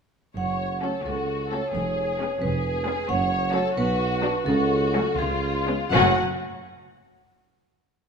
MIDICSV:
0, 0, Header, 1, 8, 480
1, 0, Start_track
1, 0, Key_signature, 3, "minor"
1, 0, Tempo, 456274
1, 390, Time_signature, 6, 3, 24, 8
1, 4703, Tempo, 482703
1, 8297, End_track
2, 0, Start_track
2, 0, Title_t, "Vibraphone"
2, 0, Program_c, 0, 11
2, 389, Note_on_c, 0, 78, 60
2, 843, Note_off_c, 0, 78, 0
2, 880, Note_on_c, 0, 73, 59
2, 1103, Note_off_c, 0, 73, 0
2, 1116, Note_on_c, 0, 69, 58
2, 1562, Note_off_c, 0, 69, 0
2, 1608, Note_on_c, 0, 73, 59
2, 1822, Note_off_c, 0, 73, 0
2, 1838, Note_on_c, 0, 73, 64
2, 2506, Note_off_c, 0, 73, 0
2, 2542, Note_on_c, 0, 71, 68
2, 3214, Note_off_c, 0, 71, 0
2, 3251, Note_on_c, 0, 78, 84
2, 3696, Note_off_c, 0, 78, 0
2, 3712, Note_on_c, 0, 73, 78
2, 3945, Note_off_c, 0, 73, 0
2, 3971, Note_on_c, 0, 71, 84
2, 4660, Note_off_c, 0, 71, 0
2, 4695, Note_on_c, 0, 69, 91
2, 5371, Note_off_c, 0, 69, 0
2, 5416, Note_on_c, 0, 68, 76
2, 6110, Note_off_c, 0, 68, 0
2, 6149, Note_on_c, 0, 66, 82
2, 6418, Note_off_c, 0, 66, 0
2, 8297, End_track
3, 0, Start_track
3, 0, Title_t, "Violin section"
3, 0, Program_c, 1, 48
3, 386, Note_on_c, 1, 73, 52
3, 841, Note_off_c, 1, 73, 0
3, 861, Note_on_c, 1, 69, 47
3, 1106, Note_off_c, 1, 69, 0
3, 1112, Note_on_c, 1, 66, 50
3, 1587, Note_on_c, 1, 69, 53
3, 1593, Note_off_c, 1, 66, 0
3, 1817, Note_on_c, 1, 68, 56
3, 1828, Note_off_c, 1, 69, 0
3, 2523, Note_off_c, 1, 68, 0
3, 2542, Note_on_c, 1, 68, 61
3, 3239, Note_on_c, 1, 73, 69
3, 3242, Note_off_c, 1, 68, 0
3, 3724, Note_off_c, 1, 73, 0
3, 3724, Note_on_c, 1, 69, 65
3, 3955, Note_on_c, 1, 66, 75
3, 3968, Note_off_c, 1, 69, 0
3, 4673, Note_off_c, 1, 66, 0
3, 4686, Note_on_c, 1, 66, 75
3, 5392, Note_off_c, 1, 66, 0
3, 5402, Note_on_c, 1, 65, 69
3, 6128, Note_on_c, 1, 78, 74
3, 6143, Note_off_c, 1, 65, 0
3, 6406, Note_off_c, 1, 78, 0
3, 8297, End_track
4, 0, Start_track
4, 0, Title_t, "Violin section"
4, 0, Program_c, 2, 48
4, 859, Note_on_c, 2, 61, 45
4, 871, Note_on_c, 2, 66, 41
4, 1047, Note_off_c, 2, 61, 0
4, 1054, Note_off_c, 2, 66, 0
4, 1597, Note_on_c, 2, 61, 45
4, 1603, Note_on_c, 2, 66, 46
4, 1773, Note_off_c, 2, 61, 0
4, 1776, Note_off_c, 2, 66, 0
4, 2306, Note_on_c, 2, 68, 51
4, 2312, Note_on_c, 2, 61, 51
4, 2484, Note_off_c, 2, 68, 0
4, 2487, Note_off_c, 2, 61, 0
4, 3013, Note_on_c, 2, 68, 58
4, 3017, Note_on_c, 2, 61, 56
4, 3194, Note_off_c, 2, 68, 0
4, 3195, Note_off_c, 2, 61, 0
4, 3717, Note_on_c, 2, 66, 64
4, 3720, Note_on_c, 2, 61, 63
4, 3903, Note_off_c, 2, 66, 0
4, 3904, Note_off_c, 2, 61, 0
4, 4450, Note_on_c, 2, 62, 69
4, 4452, Note_on_c, 2, 66, 66
4, 4636, Note_off_c, 2, 62, 0
4, 4637, Note_off_c, 2, 66, 0
4, 5181, Note_on_c, 2, 61, 71
4, 5182, Note_on_c, 2, 66, 67
4, 5357, Note_off_c, 2, 61, 0
4, 5357, Note_off_c, 2, 66, 0
4, 5901, Note_on_c, 2, 61, 62
4, 5901, Note_on_c, 2, 65, 59
4, 6085, Note_off_c, 2, 61, 0
4, 6086, Note_off_c, 2, 65, 0
4, 6145, Note_on_c, 2, 66, 68
4, 6149, Note_on_c, 2, 61, 68
4, 6416, Note_off_c, 2, 66, 0
4, 6418, Note_off_c, 2, 61, 0
4, 8297, End_track
5, 0, Start_track
5, 0, Title_t, "Viola section"
5, 0, Program_c, 3, 48
5, 876, Note_on_c, 3, 57, 40
5, 878, Note_on_c, 3, 61, 41
5, 1056, Note_off_c, 3, 57, 0
5, 1057, Note_off_c, 3, 61, 0
5, 1597, Note_on_c, 3, 57, 47
5, 1599, Note_on_c, 3, 61, 44
5, 1773, Note_off_c, 3, 57, 0
5, 1774, Note_off_c, 3, 61, 0
5, 2318, Note_on_c, 3, 59, 47
5, 2321, Note_on_c, 3, 56, 49
5, 2490, Note_off_c, 3, 59, 0
5, 2492, Note_off_c, 3, 56, 0
5, 3007, Note_on_c, 3, 59, 52
5, 3013, Note_on_c, 3, 56, 56
5, 3190, Note_off_c, 3, 59, 0
5, 3193, Note_off_c, 3, 56, 0
5, 3719, Note_on_c, 3, 57, 64
5, 3722, Note_on_c, 3, 54, 65
5, 3904, Note_off_c, 3, 57, 0
5, 3906, Note_off_c, 3, 54, 0
5, 4449, Note_on_c, 3, 54, 68
5, 4452, Note_off_c, 3, 54, 0
5, 4452, Note_on_c, 3, 54, 67
5, 4638, Note_off_c, 3, 54, 0
5, 5179, Note_on_c, 3, 54, 70
5, 5182, Note_on_c, 3, 57, 66
5, 5356, Note_off_c, 3, 54, 0
5, 5357, Note_off_c, 3, 57, 0
5, 5907, Note_on_c, 3, 59, 58
5, 5910, Note_on_c, 3, 56, 56
5, 6089, Note_off_c, 3, 59, 0
5, 6090, Note_off_c, 3, 56, 0
5, 6158, Note_on_c, 3, 54, 67
5, 6162, Note_on_c, 3, 57, 67
5, 6422, Note_off_c, 3, 54, 0
5, 6424, Note_off_c, 3, 57, 0
5, 8297, End_track
6, 0, Start_track
6, 0, Title_t, "Cello section"
6, 0, Program_c, 4, 48
6, 384, Note_on_c, 4, 42, 50
6, 965, Note_off_c, 4, 42, 0
6, 1123, Note_on_c, 4, 37, 52
6, 1687, Note_off_c, 4, 37, 0
6, 1834, Note_on_c, 4, 41, 58
6, 2397, Note_off_c, 4, 41, 0
6, 2544, Note_on_c, 4, 41, 59
6, 3109, Note_off_c, 4, 41, 0
6, 3259, Note_on_c, 4, 42, 71
6, 3823, Note_off_c, 4, 42, 0
6, 3965, Note_on_c, 4, 47, 68
6, 4546, Note_off_c, 4, 47, 0
6, 4697, Note_on_c, 4, 49, 81
6, 5265, Note_off_c, 4, 49, 0
6, 5411, Note_on_c, 4, 49, 74
6, 5998, Note_off_c, 4, 49, 0
6, 6148, Note_on_c, 4, 42, 76
6, 6417, Note_off_c, 4, 42, 0
6, 8297, End_track
7, 0, Start_track
7, 0, Title_t, "Double bass section"
7, 0, Program_c, 5, 48
7, 390, Note_on_c, 5, 30, 51
7, 968, Note_off_c, 5, 30, 0
7, 1119, Note_on_c, 5, 37, 47
7, 1685, Note_off_c, 5, 37, 0
7, 1828, Note_on_c, 5, 29, 55
7, 2393, Note_off_c, 5, 29, 0
7, 2540, Note_on_c, 5, 29, 57
7, 3106, Note_off_c, 5, 29, 0
7, 3248, Note_on_c, 5, 30, 64
7, 3818, Note_off_c, 5, 30, 0
7, 3960, Note_on_c, 5, 35, 73
7, 4544, Note_off_c, 5, 35, 0
7, 4695, Note_on_c, 5, 37, 75
7, 5264, Note_off_c, 5, 37, 0
7, 5407, Note_on_c, 5, 37, 74
7, 5996, Note_off_c, 5, 37, 0
7, 6145, Note_on_c, 5, 30, 74
7, 6415, Note_off_c, 5, 30, 0
7, 8297, End_track
8, 0, Start_track
8, 0, Title_t, "Tuba"
8, 0, Program_c, 6, 58
8, 384, Note_on_c, 6, 30, 52
8, 965, Note_off_c, 6, 30, 0
8, 1116, Note_on_c, 6, 37, 50
8, 1683, Note_off_c, 6, 37, 0
8, 1833, Note_on_c, 6, 29, 54
8, 2396, Note_off_c, 6, 29, 0
8, 2546, Note_on_c, 6, 29, 57
8, 3109, Note_off_c, 6, 29, 0
8, 3255, Note_on_c, 6, 30, 66
8, 3821, Note_off_c, 6, 30, 0
8, 3968, Note_on_c, 6, 35, 74
8, 4547, Note_off_c, 6, 35, 0
8, 4696, Note_on_c, 6, 37, 83
8, 5264, Note_off_c, 6, 37, 0
8, 5410, Note_on_c, 6, 37, 68
8, 5998, Note_off_c, 6, 37, 0
8, 6152, Note_on_c, 6, 30, 79
8, 6352, Note_off_c, 6, 30, 0
8, 8297, End_track
0, 0, End_of_file